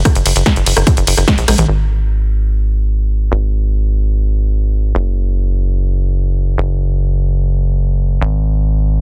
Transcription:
0.05 kick, cross-stick, closed hi-hat, ride
0.15 analog synth bass F#1, closed hi-hat
0.26 analog synth bass F#1, open hi-hat, ride
0.36 analog synth bass F#1, closed hi-hat
0.46 kick, cross-stick, snare, closed hi-hat, ride
0.56 analog synth bass F#1, closed hi-hat
0.66 analog synth bass F#1, open hi-hat, ride
0.77 analog synth bass F#1, cross-stick, closed hi-hat
0.87 kick, closed hi-hat, ride
0.97 analog synth bass F#1, closed hi-hat
1.07 analog synth bass F#1, open hi-hat, ride
1.17 analog synth bass F#1, cross-stick, closed hi-hat
1.28 kick, snare, closed hi-hat, ride
1.38 analog synth bass A#1, closed hi-hat
1.48 analog synth bass A#1, cross-stick, open hi-hat, high tom, ride
1.58 analog synth bass A#1, closed hi-hat, mid tom
1.68 analog synth bass G#1
3.32 analog synth bass G#1
4.95 analog synth bass F#1
6.58 analog synth bass F#1
8.21 analog synth bass G#1

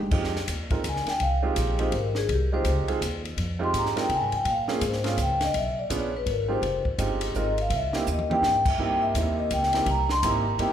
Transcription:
0.11 upright bass F2, grand piano G#3 C4 D#4 F4 G4, kick, crash
0.24 snare
0.36 snare
0.48 upright bass D#2, kick, hi-hat pedal, ride
0.70 grand piano G#3 C4 D#4 F4 A#4, kick, ride
0.84 upright bass C#2, kick, hi-hat pedal, ride
0.89 vibraphone G#5
0.96 snare
1.06 vibraphone G5, muted upright bass stroke, snare, ride
1.20 upright bass C2, vibraphone F5, kick, ride
1.43 grand piano G#3 C4 D#4 F4 G4
1.56 upright bass A#1, kick, hi-hat pedal, ride
1.79 grand piano G#3 C4 D#4 F4 G4, vibraphone C5, ride
1.92 upright bass G#1, kick, ride
1.97 vibraphone A#4
2.15 vibraphone G#4, snare
2.28 upright bass C2, kick, ride
2.33 vibraphone G4
2.52 grand piano G#3 C4 D#4 F4 G4, vibraphone C5
2.64 upright bass C#2, kick, hi-hat pedal, ride
2.87 grand piano G#3 C4 D#4 F4 G#4, muted upright bass stroke, ride
3.01 upright bass D#2, kick, hi-hat pedal, ride
3.25 ride
3.37 upright bass F2, kick, ride
3.59 grand piano G#3 C4 D#4 F4 G4
3.64 vibraphone C6
3.74 upright bass G#2, kick, hi-hat pedal, ride
3.78 vibraphone A#5
3.86 snare
3.96 grand piano G#3 C4 D#4 F4 A#4, snare, ride
4.00 vibraphone G5
4.09 upright bass C3, kick, ride
4.15 vibraphone G#5
4.21 upright bass G#2
4.32 upright bass F2, vibraphone G5, ride
4.45 upright bass A#2, kick, ride
4.51 vibraphone F5
4.68 grand piano A#3 C4 C#4 F4 G#4, vibraphone G#4, snare
4.81 upright bass G#2, kick, hi-hat pedal, ride
4.87 vibraphone C5
4.93 snare
5.04 grand piano A#3 C4 C#4 F4 G#4, vibraphone F5, snare, ride
5.17 upright bass C#2, kick, hi-hat pedal, ride
5.22 vibraphone G5
5.41 vibraphone D#5, snare, ride
5.54 upright bass B1, vibraphone E5, kick, ride
5.79 vibraphone D5
5.90 upright bass A#1, grand piano B3 C#4 D4 F4 G#4, kick, hi-hat pedal, ride
5.95 vibraphone C#5
6.17 vibraphone B4
6.26 upright bass G#1, kick, ride
6.30 vibraphone A#4
6.48 grand piano G#3 C4 D#4 F4 G4, vibraphone C5
6.62 upright bass F1, kick, ride
6.85 muted upright bass stroke, kick
6.98 upright bass G1, grand piano G#3 C4 D#4 F4 G4, kick, hi-hat pedal, ride
7.21 ride
7.34 upright bass G#1, grand piano G#3 C4 D#4 F4 A#4, kick, hi-hat pedal
7.40 vibraphone D#5
7.58 vibraphone F5, ride
7.70 upright bass C2, kick, ride
7.76 vibraphone E5
7.93 grand piano A#3 C4 D#4 E4 G4, muted upright bass stroke, snare
8.07 upright bass D#2, hi-hat pedal
8.12 vibraphone D#5
8.19 mid tom
8.30 grand piano A#3 C4 D#4 E4 G4, vibraphone G5, mid tom
8.42 upright bass G#2, snare
8.66 vibraphone E5, kick, crash
8.78 upright bass G2, grand piano A#3 C4 D#4 E4 G4, kick
8.83 vibraphone G5
9.02 vibraphone E5
9.14 upright bass D#2, grand piano A#3 C4 D#4 E4 G4, kick, hi-hat pedal, ride
9.39 vibraphone D#5
9.51 upright bass C#2, vibraphone G5, kick, hi-hat pedal, ride
9.63 snare
9.73 grand piano A#3 C4 D#4 E4 G4, snare, ride
9.86 upright bass C2, kick, ride
9.90 vibraphone A#5
10.09 vibraphone C6, snare
10.23 upright bass G#1, grand piano A#3 C4 D#4 E4 G4, vibraphone A#5, kick, hi-hat pedal, ride
10.58 upright bass G1, grand piano A#3 C4 D#4 E4 G4, vibraphone G5, kick, ride

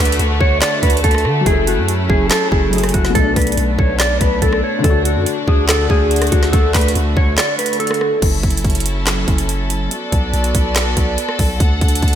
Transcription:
Already playing: felt piano D3 A3 F#4, string section D3 A3 D4 F#4, clean electric guitar B4
0.00 808-style bass D2
0.05 closed hi-hat
0.12 closed hi-hat
0.19 808-style bass D2, closed hi-hat
0.41 808-style bass D2, clean electric guitar C#5, kick
0.61 clean electric guitar D5, snare, clap, closed hi-hat
0.83 808-style bass D2, clean electric guitar B4, kick, closed hi-hat
0.90 closed hi-hat
0.97 closed hi-hat
1.04 808-style bass D2, clean electric guitar A4, kick, closed hi-hat
1.11 cross-stick, closed hi-hat
1.18 closed hi-hat
1.25 808-style bass D3, cross-stick
1.41 felt piano F#3
1.46 808-style bass F#1, string section F#3 C#4 E4, felt piano E4, clean electric guitar G#4, kick, closed hi-hat
1.52 felt piano A4
1.67 clean electric guitar F#4, closed hi-hat
1.78 808-style bass F#2
1.88 closed hi-hat
2.10 808-style bass F#1, clean electric guitar G#4, kick
2.30 clean electric guitar A4, snare, clap, closed hi-hat
2.52 808-style bass F#1, clean electric guitar G#4, kick
2.70 felt piano F#3 E4, closed hi-hat
2.76 felt piano G#4, closed hi-hat
2.84 cross-stick, closed hi-hat
2.89 closed hi-hat
2.94 808-style bass F#1, clean electric guitar F#4, kick, closed hi-hat
3.05 snare
3.10 felt piano B2
3.15 808-style bass B1, string section A3 B3 D4, felt piano A3, clean electric guitar A4, kick, closed hi-hat
3.21 felt piano D4
3.36 808-style bass B1, clean electric guitar B4, kick, closed hi-hat, open hi-hat
3.42 closed hi-hat
3.47 closed hi-hat
3.52 closed hi-hat
3.57 808-style bass B1, closed hi-hat
3.79 808-style bass B1, clean electric guitar C#5, kick
3.99 clean electric guitar D5, snare, clap, closed hi-hat
4.21 808-style bass B1, clean electric guitar B4, kick, closed hi-hat
4.42 808-style bass B1, clean electric guitar A4, kick, closed hi-hat
4.53 cross-stick
4.64 clean electric guitar C#5
4.79 felt piano D3
4.84 808-style bass D2, string section D3 A3 F#4, felt piano A3, clean electric guitar A4, kick, closed hi-hat
4.90 felt piano F#4
5.05 clean electric guitar F#4, closed hi-hat
5.16 808-style bass F#2
5.26 closed hi-hat
5.48 808-style bass D2, clean electric guitar G#4, kick
5.69 clean electric guitar A4, snare, clap, closed hi-hat
5.90 808-style bass D2, clean electric guitar G#4, kick
6.11 closed hi-hat
6.16 closed hi-hat
6.22 cross-stick, closed hi-hat
6.27 closed hi-hat
6.32 808-style bass D2, clean electric guitar F#4, kick, closed hi-hat
6.43 snare
6.53 808-style bass D2, clean electric guitar A4, kick, closed hi-hat
6.74 808-style bass D2, clean electric guitar B4, kick, snare, clap, closed hi-hat, open hi-hat
6.81 closed hi-hat
6.88 closed hi-hat
6.95 808-style bass D2, closed hi-hat
7.17 808-style bass D2, clean electric guitar C#5, kick
7.38 clean electric guitar D5, snare, clap, closed hi-hat
7.59 clean electric guitar B4, closed hi-hat
7.66 closed hi-hat
7.73 closed hi-hat
7.80 clean electric guitar A4, closed hi-hat
7.87 cross-stick, closed hi-hat
7.94 closed hi-hat
8.01 cross-stick
8.22 808-style bass F#1, string section F#3 C#4 E4 A4, kick, closed hi-hat, crash
8.43 808-style bass F#1, kick, closed hi-hat
8.50 closed hi-hat
8.57 closed hi-hat
8.65 808-style bass F#1, kick, closed hi-hat
8.70 closed hi-hat
8.75 closed hi-hat
8.80 closed hi-hat
8.86 closed hi-hat
9.07 snare, clap, closed hi-hat
9.28 808-style bass F#1, kick, closed hi-hat
9.38 closed hi-hat
9.49 closed hi-hat
9.70 closed hi-hat
9.91 string section B3 F#4 D5, closed hi-hat
10.12 808-style bass B1, kick, closed hi-hat
10.34 808-style bass B1, closed hi-hat
10.44 closed hi-hat
10.55 808-style bass B1, kick, closed hi-hat
10.76 snare, clap, closed hi-hat
10.97 808-style bass B1, kick, closed hi-hat
11.18 closed hi-hat
11.29 cross-stick
11.39 808-style bass B1, kick, open hi-hat
11.60 808-style bass D2, string section D3 D4 F#5, kick, closed hi-hat
11.81 808-style bass D2, kick, closed hi-hat
11.88 closed hi-hat
11.95 closed hi-hat
12.02 808-style bass D2, kick, closed hi-hat
12.08 closed hi-hat

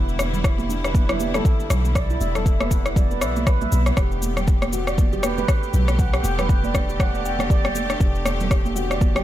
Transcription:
Already playing: 808-style bass E1, string section D3 G3 B3 E4
0.09 shaker
0.19 cross-stick, muted conga, high conga, shaker
0.33 low conga, shaker
0.44 handpan E4, kick, cross-stick, muted conga, shaker
0.58 high conga, shaker
0.69 handpan D4, muted conga, high conga, shaker
0.84 handpan B4, cross-stick, shaker
0.94 kick, high conga, shaker
1.09 handpan E4, cross-stick, muted conga, low conga, shaker
1.20 handpan G4, high conga, shaker
1.34 handpan A4, cross-stick, muted conga, high conga, low conga, shaker
1.45 kick, shaker
1.60 muted conga, shaker
1.70 808-style bass B1, cross-stick, low conga, shaker
1.85 muted conga, shaker
1.95 handpan D5, kick, cross-stick, shaker
2.10 handpan E4, shaker
2.21 808-style bass E1, handpan E5, muted conga, shaker
2.35 handpan A4, cross-stick, low conga, shaker
2.46 handpan E5, kick, shaker
2.60 handpan B4, cross-stick, high conga, shaker
2.71 handpan B3, kick, muted conga, high conga, shaker
2.86 handpan E4, cross-stick, shaker
2.96 handpan D5, kick, low conga, shaker
3.11 handpan B4, muted conga, shaker
3.21 808-style bass B1, handpan E5, cross-stick, shaker
3.36 muted conga, high conga, shaker
3.47 handpan B4, kick, cross-stick, shaker
3.61 handpan E5, muted conga, high conga, low conga, shaker
3.72 808-style bass B1, high conga, shaker
3.86 handpan B3, cross-stick, muted conga, shaker
3.97 808-style bass E1, string section D3 A3 G4, handpan G4, kick, cross-stick, shaker
4.12 shaker
4.22 muted conga, high conga, shaker
4.37 cross-stick, low conga, shaker
4.48 kick, muted conga, shaker
4.62 cross-stick, high conga, shaker
4.72 handpan F#4, muted conga, high conga, shaker
4.87 handpan D5, cross-stick, shaker
4.98 kick, high conga, shaker
5.13 handpan G4, muted conga, low conga, shaker
5.23 handpan B4, cross-stick, high conga, shaker
5.38 handpan B4, muted conga, high conga, low conga, shaker
5.48 kick, cross-stick, shaker
5.63 muted conga, shaker
5.73 808-style bass B1, low conga, shaker
5.88 cross-stick, muted conga, shaker
5.99 handpan F#5, kick, shaker
6.14 handpan G4, cross-stick, shaker
6.23 808-style bass E1, handpan G5, muted conga, shaker
6.38 handpan B4, cross-stick, low conga, shaker
6.49 handpan G5, kick, muted conga, shaker
6.64 handpan D5, high conga, shaker
6.74 handpan D4, kick, cross-stick, muted conga, high conga, shaker
6.89 handpan G4, shaker
6.99 handpan F#5, kick, cross-stick, low conga, shaker
7.14 handpan D5, muted conga, shaker
7.25 handpan G5, shaker
7.39 cross-stick, muted conga, high conga, shaker
7.50 handpan D5, kick, shaker
7.65 handpan G5, cross-stick, muted conga, high conga, low conga, shaker
7.75 high conga, shaker
7.90 handpan D4, cross-stick, muted conga, shaker
8.00 808-style bass E1, handpan G4, kick, shaker
8.15 shaker
8.25 cross-stick, muted conga, high conga, shaker
8.40 low conga, shaker
8.50 handpan G4, kick, cross-stick, shaker
8.65 high conga, shaker
8.76 handpan F#4, muted conga, high conga, shaker
8.90 handpan D5, cross-stick, shaker
9.01 kick, high conga, shaker
9.15 handpan G4, cross-stick, muted conga, low conga, shaker

